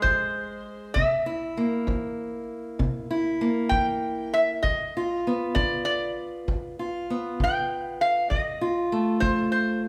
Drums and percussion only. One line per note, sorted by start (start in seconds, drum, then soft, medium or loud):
0.04 kick medium
0.96 kick medium
1.88 kick medium
2.80 kick medium
3.72 kick medium
4.64 kick medium
5.56 kick medium
6.48 kick medium
7.40 kick medium
8.31 kick medium
9.22 kick medium